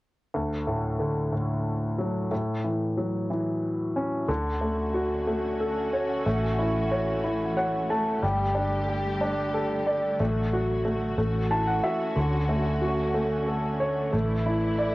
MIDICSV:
0, 0, Header, 1, 4, 480
1, 0, Start_track
1, 0, Key_signature, 2, "major"
1, 0, Tempo, 656455
1, 251, Time_signature, 6, 3, 24, 8
1, 10931, End_track
2, 0, Start_track
2, 0, Title_t, "Grand piano"
2, 0, Program_c, 0, 0
2, 248, Note_on_c, 0, 38, 43
2, 372, Control_c, 0, 64, 127
2, 490, Note_on_c, 0, 45, 36
2, 728, Note_on_c, 0, 50, 38
2, 959, Note_off_c, 0, 45, 0
2, 970, Note_on_c, 0, 45, 37
2, 1452, Note_on_c, 0, 54, 38
2, 1663, Note_off_c, 0, 38, 0
2, 1663, Note_off_c, 0, 50, 0
2, 1671, Note_off_c, 0, 45, 0
2, 1686, Note_off_c, 0, 54, 0
2, 1692, Note_on_c, 0, 45, 45
2, 1705, Control_c, 0, 64, 0
2, 1846, Control_c, 0, 64, 127
2, 1933, Note_on_c, 0, 52, 35
2, 2175, Note_on_c, 0, 54, 40
2, 2404, Note_off_c, 0, 52, 0
2, 2415, Note_on_c, 0, 52, 41
2, 2895, Note_on_c, 0, 61, 41
2, 3106, Note_off_c, 0, 45, 0
2, 3108, Note_off_c, 0, 54, 0
2, 3114, Note_off_c, 0, 52, 0
2, 3129, Note_off_c, 0, 61, 0
2, 3132, Note_on_c, 0, 50, 51
2, 3145, Control_c, 0, 64, 0
2, 3272, Control_c, 0, 64, 127
2, 3372, Note_on_c, 0, 57, 40
2, 3613, Note_on_c, 0, 66, 42
2, 3845, Note_off_c, 0, 57, 0
2, 3856, Note_on_c, 0, 57, 47
2, 4098, Note_on_c, 0, 69, 39
2, 4337, Note_on_c, 0, 73, 44
2, 4546, Note_off_c, 0, 50, 0
2, 4547, Note_off_c, 0, 66, 0
2, 4555, Note_off_c, 0, 57, 0
2, 4563, Note_off_c, 0, 69, 0
2, 4570, Note_off_c, 0, 73, 0
2, 4577, Note_on_c, 0, 57, 52
2, 4585, Control_c, 0, 64, 0
2, 4706, Control_c, 0, 64, 127
2, 4815, Note_on_c, 0, 64, 41
2, 5055, Note_on_c, 0, 73, 43
2, 5281, Note_off_c, 0, 64, 0
2, 5292, Note_on_c, 0, 64, 45
2, 5522, Note_off_c, 0, 73, 0
2, 5533, Note_on_c, 0, 73, 44
2, 5533, Note_on_c, 0, 78, 50
2, 5758, Note_off_c, 0, 78, 0
2, 5767, Note_off_c, 0, 57, 0
2, 5778, Note_on_c, 0, 57, 47
2, 5778, Note_on_c, 0, 81, 50
2, 5993, Note_off_c, 0, 64, 0
2, 6001, Note_off_c, 0, 73, 0
2, 6001, Note_off_c, 0, 81, 0
2, 6010, Note_off_c, 0, 57, 0
2, 6015, Note_on_c, 0, 55, 56
2, 6027, Control_c, 0, 64, 0
2, 6163, Control_c, 0, 64, 127
2, 6250, Note_on_c, 0, 62, 45
2, 6493, Note_on_c, 0, 67, 43
2, 6725, Note_off_c, 0, 62, 0
2, 6736, Note_on_c, 0, 62, 48
2, 6977, Note_on_c, 0, 69, 41
2, 7214, Note_on_c, 0, 74, 44
2, 7426, Note_off_c, 0, 55, 0
2, 7426, Note_off_c, 0, 67, 0
2, 7435, Note_off_c, 0, 62, 0
2, 7442, Note_off_c, 0, 69, 0
2, 7448, Note_off_c, 0, 74, 0
2, 7459, Note_on_c, 0, 57, 52
2, 7468, Control_c, 0, 64, 0
2, 7610, Control_c, 0, 64, 127
2, 7702, Note_on_c, 0, 66, 43
2, 7921, Note_off_c, 0, 57, 0
2, 7932, Note_on_c, 0, 57, 43
2, 8163, Note_off_c, 0, 57, 0
2, 8165, Note_off_c, 0, 66, 0
2, 8174, Note_on_c, 0, 57, 54
2, 8184, Control_c, 0, 64, 0
2, 8326, Control_c, 0, 64, 127
2, 8415, Note_on_c, 0, 81, 53
2, 8417, Note_on_c, 0, 64, 39
2, 8527, Note_off_c, 0, 81, 0
2, 8532, Note_on_c, 0, 78, 51
2, 8646, Note_off_c, 0, 78, 0
2, 8654, Note_on_c, 0, 76, 52
2, 8656, Note_on_c, 0, 66, 42
2, 8873, Note_off_c, 0, 57, 0
2, 8878, Note_off_c, 0, 76, 0
2, 8882, Note_off_c, 0, 64, 0
2, 8889, Note_off_c, 0, 66, 0
2, 8890, Note_on_c, 0, 50, 51
2, 8904, Control_c, 0, 64, 0
2, 9049, Control_c, 0, 64, 127
2, 9132, Note_on_c, 0, 57, 42
2, 9370, Note_on_c, 0, 66, 44
2, 9598, Note_off_c, 0, 57, 0
2, 9609, Note_on_c, 0, 57, 44
2, 9851, Note_on_c, 0, 69, 42
2, 10090, Note_on_c, 0, 73, 48
2, 10302, Note_off_c, 0, 50, 0
2, 10303, Note_off_c, 0, 66, 0
2, 10310, Note_off_c, 0, 57, 0
2, 10318, Note_off_c, 0, 69, 0
2, 10325, Note_off_c, 0, 73, 0
2, 10328, Note_on_c, 0, 57, 51
2, 10345, Control_c, 0, 64, 0
2, 10484, Control_c, 0, 64, 127
2, 10572, Note_on_c, 0, 64, 46
2, 10810, Note_on_c, 0, 74, 43
2, 10931, Note_off_c, 0, 57, 0
2, 10931, Note_off_c, 0, 64, 0
2, 10931, Note_off_c, 0, 74, 0
2, 10931, End_track
3, 0, Start_track
3, 0, Title_t, "String section"
3, 0, Program_c, 1, 48
3, 3136, Note_on_c, 1, 50, 58
3, 3138, Note_on_c, 1, 66, 70
3, 3139, Note_on_c, 1, 57, 53
3, 3139, Note_on_c, 1, 61, 53
3, 4563, Note_off_c, 1, 50, 0
3, 4579, Note_on_c, 1, 52, 62
3, 5990, Note_off_c, 1, 61, 0
3, 5990, Note_off_c, 1, 66, 0
3, 6004, Note_off_c, 1, 52, 0
3, 6021, Note_on_c, 1, 50, 63
3, 6021, Note_on_c, 1, 55, 59
3, 6021, Note_on_c, 1, 67, 68
3, 7444, Note_off_c, 1, 55, 0
3, 7444, Note_off_c, 1, 67, 0
3, 7463, Note_on_c, 1, 54, 51
3, 7465, Note_on_c, 1, 66, 69
3, 8157, Note_off_c, 1, 50, 0
3, 8172, Note_off_c, 1, 54, 0
3, 8181, Note_on_c, 1, 52, 63
3, 8181, Note_on_c, 1, 61, 56
3, 8868, Note_off_c, 1, 57, 0
3, 8891, Note_off_c, 1, 52, 0
3, 8893, Note_on_c, 1, 57, 57
3, 8894, Note_on_c, 1, 50, 60
3, 10310, Note_off_c, 1, 66, 0
3, 10315, Note_off_c, 1, 61, 0
3, 10329, Note_on_c, 1, 52, 59
3, 10331, Note_on_c, 1, 64, 73
3, 10931, Note_off_c, 1, 50, 0
3, 10931, Note_off_c, 1, 52, 0
3, 10931, Note_off_c, 1, 57, 0
3, 10931, Note_off_c, 1, 64, 0
3, 10931, End_track
4, 0, Start_track
4, 0, Title_t, "Fingered electric bass"
4, 0, Program_c, 2, 33
4, 3134, Note_on_c, 2, 38, 74
4, 4547, Note_off_c, 2, 38, 0
4, 4579, Note_on_c, 2, 33, 78
4, 5989, Note_off_c, 2, 33, 0
4, 6019, Note_on_c, 2, 31, 78
4, 7428, Note_off_c, 2, 31, 0
4, 7460, Note_on_c, 2, 33, 74
4, 8149, Note_off_c, 2, 33, 0
4, 8174, Note_on_c, 2, 33, 68
4, 8626, Note_off_c, 2, 33, 0
4, 8895, Note_on_c, 2, 38, 77
4, 10305, Note_off_c, 2, 38, 0
4, 10335, Note_on_c, 2, 33, 78
4, 10931, Note_off_c, 2, 33, 0
4, 10931, End_track
0, 0, End_of_file